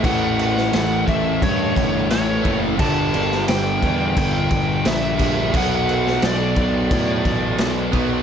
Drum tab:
CC |x-x-x-x-x-x-x-x-|x-x-x-x-x-x-x-x-|x-x-x-x-x-x-x-x-|
SD |---oo-------o---|---oo-------o---|---oo-------o---|
BD |o-----o-o-o---o-|o-----o-o-o---o-|o-----o-o-o---o-|